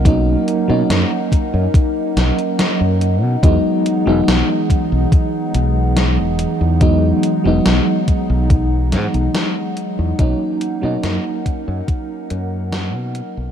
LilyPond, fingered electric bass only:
\new Staff \with { instrumentName = "Fingered electric bass" } { \clef bass \time 4/4 \key e \lydian \tempo 4 = 71 b,,16 r8 b,16 fis,16 r8 fis,16 r8 b,,16 r8 fis,8 b,16 | e,16 r8 e,,16 b,,16 r8 b,,16 r8 b,,8. e,,16 r16 e,16~ | e,16 r8 e,,16 b,,16 r8 b,,8. gis,16 b,,16 r8. e,16 | b,,16 r8 b,16 fis,16 r8 fis,16 r8 fis,8. b,16 r16 b,,16 | }